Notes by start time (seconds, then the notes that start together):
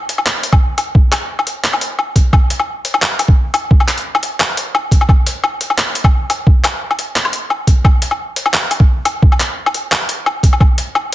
0.09 closed hi-hat
0.18 low woodblock
0.26 clap
0.43 closed hi-hat
0.53 kick, low woodblock
0.78 closed hi-hat, low woodblock
0.95 kick
1.12 clap, closed hi-hat, low woodblock
1.39 low woodblock
1.47 closed hi-hat
1.64 clap
1.73 low woodblock
1.81 closed hi-hat
1.99 low woodblock
2.16 kick, closed hi-hat
2.33 kick, low woodblock
2.50 closed hi-hat
2.60 low woodblock
2.85 closed hi-hat
2.94 low woodblock
3.02 clap
3.19 closed hi-hat, low woodblock
3.28 kick
3.54 closed hi-hat, low woodblock
3.71 kick
3.80 low woodblock
3.88 clap, closed hi-hat
3.98 closed hi-hat
4.15 low woodblock
4.23 closed hi-hat
4.40 clap, low woodblock
4.57 closed hi-hat
4.75 low woodblock
4.91 kick, closed hi-hat
5.01 low woodblock
5.09 kick, low woodblock
5.26 closed hi-hat
5.44 low woodblock
5.61 closed hi-hat
5.70 low woodblock
5.78 clap
5.95 closed hi-hat
6.04 kick, low woodblock
6.30 closed hi-hat, low woodblock
6.47 kick
6.64 clap, closed hi-hat, low woodblock
6.91 low woodblock
6.99 closed hi-hat
7.16 clap
7.25 low woodblock
7.33 closed hi-hat
7.50 low woodblock
7.67 kick, closed hi-hat
7.85 kick, low woodblock
8.02 closed hi-hat
8.11 low woodblock
8.36 closed hi-hat
8.46 low woodblock
8.54 clap
8.71 closed hi-hat, low woodblock
8.80 kick
9.05 closed hi-hat, low woodblock
9.22 kick
9.32 low woodblock
9.40 clap, closed hi-hat
9.66 low woodblock
9.74 closed hi-hat
9.92 clap, low woodblock
10.09 closed hi-hat
10.26 low woodblock
10.43 kick, closed hi-hat
10.53 low woodblock
10.60 kick, low woodblock
10.78 closed hi-hat
10.95 low woodblock